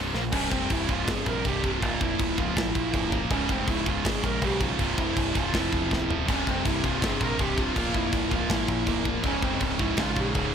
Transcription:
Already playing: picked electric bass C1, distorted electric guitar C2 G2 C3
0.14 picked electric bass A#1, distorted electric guitar A#2 F3 A#3, snare
0.23 distorted electric guitar A#2 F3
0.32 picked electric bass C1, distorted electric guitar C2 G2 C3, lead electric guitar C#4, kick, crash
0.51 picked electric bass F1, lead electric guitar C4, kick, crash
0.70 picked electric bass C1, lead electric guitar E4, kick, crash
0.87 picked electric bass C1, distorted electric guitar C2 G2 C3, lead electric guitar F4, kick, crash
1.07 picked electric bass G1, lead electric guitar G#4, kick, snare, crash
1.26 picked electric bass A#1, lead electric guitar A#4, kick, crash
1.43 picked electric bass C1, distorted electric guitar C2 G2, lead electric guitar G4, kick, crash
1.48 distorted electric guitar C3
1.62 distorted electric guitar C2 G2 C3, lead electric guitar F4, kick, crash
1.80 picked electric bass C#1, distorted electric guitar A#2 F3 A#3, kick, crash
2.01 picked electric bass F1, lead electric guitar E4, kick, crash
2.19 picked electric bass C#1, kick, crash
2.36 picked electric bass C#1, distorted electric guitar A#2 F3 A#3, lead electric guitar F4, kick, crash
2.56 picked electric bass G#1, lead electric guitar E4, kick, snare, crash
2.75 picked electric bass A#1, kick, crash
2.91 picked electric bass C#1, distorted electric guitar A#2 F3 A#3, kick, crash
3.10 distorted electric guitar A#2 F3 A#3, kick, crash
3.29 picked electric bass C#1, distorted electric guitar C#2 G#2 C#3, lead electric guitar C#4, kick, crash
3.49 picked electric bass F1, lead electric guitar C4, kick, crash
3.67 picked electric bass C#1, lead electric guitar E4, kick, crash
3.85 picked electric bass C#1, distorted electric guitar G#2 C#3, lead electric guitar F4, kick, crash
3.89 distorted electric guitar C#2
4.05 picked electric bass G#1, lead electric guitar G#4, kick, snare, crash
4.23 picked electric bass A#1, lead electric guitar A#4, kick, crash
4.41 picked electric bass B1, distorted electric guitar C#2 G#2 C#3, lead electric guitar G4, kick, crash
4.59 distorted electric guitar C#2 G#2 C#3, lead electric guitar F4, kick, crash
4.77 picked electric bass C1, distorted electric guitar C2 G2 C3, kick, crash
4.98 picked electric bass F1, lead electric guitar E4, kick, crash
5.16 picked electric bass C1, kick, crash
5.34 picked electric bass C1, distorted electric guitar C2 G2 C3, kick, crash
5.38 lead electric guitar F4
5.52 picked electric bass F1, distorted electric guitar F2 C3 F3, lead electric guitar E4, kick, snare, crash
5.72 picked electric bass E1, kick, crash
5.91 picked electric bass C#1, kick, snare
6.08 distorted electric guitar F2 C3 F3, floor tom
6.26 picked electric bass C1, distorted electric guitar C2 G2 C3, lead electric guitar C#4, kick, splash, crash
6.47 picked electric bass F1, lead electric guitar C4, kick, crash
6.65 picked electric bass C1, lead electric guitar E4, kick, crash
6.82 picked electric bass C1, distorted electric guitar C2 G2 C3, lead electric guitar F4, kick, crash
7.00 picked electric bass G1, overdriven electric guitar C2 G2 C3, kick, snare, crash
7.05 lead electric guitar G#4
7.21 picked electric bass A#1, lead electric guitar A#4, kick, crash
7.37 picked electric bass C1, distorted electric guitar C2 G2 C3, lead electric guitar G4, kick, crash
7.55 distorted electric guitar C2 G2 C3, kick, crash
7.60 lead electric guitar F4
7.74 picked electric bass C#1, distorted electric guitar A#2 F3 A#3, kick, crash
7.94 picked electric bass F1, lead electric guitar E4, kick, crash
8.12 picked electric bass C#1, kick, crash
8.30 picked electric bass C#1, distorted electric guitar A#2 F3 A#3, lead electric guitar F4, kick, crash
8.49 picked electric bass G#1, overdriven electric guitar A#2 F3 A#3, lead electric guitar E4, kick, snare, crash
8.68 picked electric bass A#1, kick, crash
8.86 picked electric bass C#1, distorted electric guitar A#2 F3 A#3, kick, crash
9.04 distorted electric guitar A#2 F3 A#3, kick, crash
9.22 picked electric bass C#1, distorted electric guitar C#2 G#2 C#3, kick, crash
9.27 lead electric guitar C#4
9.42 picked electric bass F1, lead electric guitar C4, kick, crash
9.60 picked electric bass C#1, kick, crash
9.78 picked electric bass C#1, distorted electric guitar C#2 G#2 C#3, lead electric guitar E4, kick, crash
9.97 picked electric bass G#1, overdriven electric guitar C#2 G#2 C#3, lead electric guitar F4, kick, snare, crash
10.16 picked electric bass A#1, lead electric guitar G#4, kick, crash
10.33 picked electric bass C#1, distorted electric guitar C#2 G#2 C#3, kick, crash

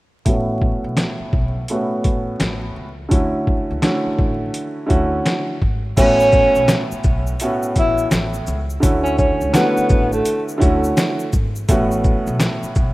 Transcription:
0.25 upright bass A1, upright piano A2 A3 B3 C#4 F#4, kick, closed hi-hat
0.62 kick
0.84 upright bass B1
0.97 snare, closed hi-hat
1.20 muted upright bass stroke
1.33 upright bass B1, kick
1.68 upright piano A2 A3 B3 C#4 F#4, closed hi-hat
2.04 upright bass A1, kick, closed hi-hat
2.40 upright bass A1, snare, closed hi-hat
2.76 upright bass C#2
3.09 upright bass D2, upright piano D3 A3 C#4 E4 F#4, kick, closed hi-hat
3.47 kick
3.70 upright bass C#2
3.82 upright piano D3 A3 C#4 E4 F#4, snare, closed hi-hat
4.06 muted upright bass stroke
4.19 upright bass A1, kick
4.54 closed hi-hat
4.86 upright piano D3 A3 C#4 E4 F#4, kick, closed hi-hat
4.91 upright bass D2
5.25 snare, closed hi-hat
5.62 upright bass G#1, kick
5.97 upright bass A1, upright piano A2 A3 B3 C#4 F#4, tenor saxophone C#4, kick, closed hi-hat, crash, shaker
6.20 shaker
6.32 kick, shaker
6.55 upright bass B1, shaker
6.68 snare, closed hi-hat, shaker
6.92 muted upright bass stroke, shaker
7.03 upright bass B1, kick, shaker
7.27 shaker
7.40 upright piano A2 A3 B3 C#4 F#4, closed hi-hat, shaker
7.63 shaker
7.76 upright bass A1, tenor saxophone E4, kick, closed hi-hat, shaker
7.98 shaker
8.11 upright bass A1, snare, closed hi-hat, shaker
8.34 shaker
8.47 upright bass C#2, shaker
8.70 shaker
8.80 upright bass D2, upright piano D3 A3 C#4 E4 F#4, kick, closed hi-hat, shaker
9.03 tenor saxophone C#4, shaker
9.18 tenor saxophone C#4, kick, shaker
9.41 upright bass C#2, shaker
9.53 upright piano D3 A3 C#4 E4 F#4, tenor saxophone B3, snare, closed hi-hat, shaker
9.77 muted upright bass stroke, shaker
9.89 upright bass A1, kick, shaker
10.13 tenor saxophone A3, shaker
10.25 closed hi-hat, shaker
10.49 shaker
10.58 upright piano D3 A3 C#4 E4 F#4, kick, closed hi-hat, shaker
10.62 upright bass D2
10.84 shaker
10.97 snare, closed hi-hat, shaker
11.19 shaker
11.33 upright bass G#1, kick, shaker
11.56 shaker
11.68 upright bass A1, upright piano A2 A3 B3 C#4 F#4, kick, closed hi-hat, shaker
11.91 shaker
12.04 kick, shaker
12.27 upright bass B1, shaker
12.40 snare, closed hi-hat, shaker
12.63 muted upright bass stroke, shaker
12.75 upright bass B1, kick, shaker

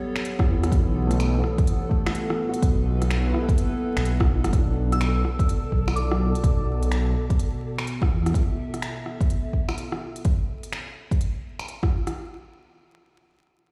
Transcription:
Already playing: felt piano G3, ambient pad B3 A4 C#5
0.16 finger snap
0.25 closed hi-hat
0.39 kick, cross-stick
0.48 detuned saw bass E2, felt piano E3
0.63 cross-stick, closed hi-hat
0.72 detuned saw bass B1, kick, closed hi-hat
1.07 felt piano A3, cross-stick, closed hi-hat
1.20 finger snap, closed hi-hat
1.39 felt piano B3
1.44 cross-stick
1.58 kick, closed hi-hat
1.67 ambient pad B4, closed hi-hat
1.89 felt piano A3, kick
2.06 finger snap, cross-stick
2.15 closed hi-hat
2.30 cross-stick
2.49 felt piano F#4
2.54 closed hi-hat
2.62 detuned saw bass B1, kick, closed hi-hat
3.02 cross-stick, closed hi-hat
3.11 finger snap, closed hi-hat
3.33 felt piano E4, cross-stick
3.38 felt piano G4
3.42 felt piano A4
3.49 kick, closed hi-hat
3.58 closed hi-hat
3.97 detuned saw bass B1, finger snap, closed hi-hat
4.05 closed hi-hat
4.20 kick, cross-stick
4.44 detuned saw bass F#1, cross-stick, closed hi-hat
4.53 detuned saw bass B1, ambient pad B2, synth texture A4, kick, closed hi-hat
4.58 felt piano D4
4.92 synth bell E6, cross-stick, closed hi-hat
5.00 ambient pad D5, finger snap, closed hi-hat
5.25 cross-stick
5.39 kick, closed hi-hat
5.49 closed hi-hat
5.72 detuned saw bass B1, kick
5.88 finger snap, cross-stick
5.96 synth bell D6, closed hi-hat
6.11 felt piano F#4, cross-stick
6.35 closed hi-hat
6.44 detuned saw bass B1, kick, closed hi-hat
6.83 closed hi-hat
6.92 finger snap, closed hi-hat
7.30 kick, closed hi-hat
7.39 closed hi-hat
7.78 finger snap
7.84 ambient pad E5, closed hi-hat
8.02 kick, cross-stick
8.11 detuned saw bass E2
8.26 cross-stick, closed hi-hat
8.34 kick, closed hi-hat
8.74 cross-stick, closed hi-hat
8.82 finger snap, closed hi-hat
9.06 cross-stick
9.21 kick, closed hi-hat
9.30 closed hi-hat
9.53 kick
9.69 finger snap, cross-stick
9.78 closed hi-hat
9.92 cross-stick
10.16 closed hi-hat
10.25 kick, closed hi-hat
10.63 closed hi-hat
10.73 finger snap, closed hi-hat
11.11 kick, closed hi-hat
11.21 closed hi-hat
11.59 finger snap, closed hi-hat
11.68 closed hi-hat
11.83 kick, cross-stick
12.07 cross-stick, closed hi-hat

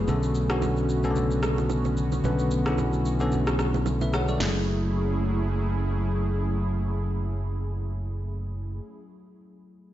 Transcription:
Already playing: analog synth pad A3 B3, tine electric piano B4
0.08 fingered electric bass B1, analog synth pad D3 C#4 F#4, tine electric piano D3 B3 C#4 A4, low conga, shaker
0.23 shaker
0.35 shaker
0.50 tine electric piano D3 B3 C#4 F#4, cross-stick, shaker
0.62 high bongo, low conga, shaker
0.77 shaker
0.89 shaker
1.03 tine electric piano C#3 B3 C#4 A4, shaker
1.10 tine electric piano D3
1.16 low conga, shaker
1.31 shaker
1.43 cross-stick, high bongo, shaker
1.58 low bongo, shaker
1.70 high bongo, shaker
1.85 low bongo, shaker
1.97 shaker
2.12 high bongo, shaker
2.24 fingered electric bass B1, tine electric piano D3 B3 C#4 B4, low conga, shaker
2.39 shaker
2.51 shaker
2.66 tine electric piano D3 B3 C#4 E4, cross-stick, shaker
2.78 high bongo, low conga, shaker
2.93 shaker
3.05 shaker
3.20 tine electric piano D3 B3 C#4 A4, shaker
3.32 low conga, shaker
3.47 cross-stick, shaker
3.59 cross-stick, high bongo, shaker
3.74 low bongo, shaker
3.86 high bongo, shaker
4.01 tine electric piano B4 E5, low bongo, shaker
4.13 tine electric piano C#5 F#5, cross-stick, shaker
4.28 tine electric piano A4 D5, high bongo, shaker
4.38 fingered electric bass F#1, tine electric piano F#3 A3 E4, analog synth pad F#3 A3 C#4 E4 G#4, snare, open hi-hat, low conga
4.43 tine electric piano G#4

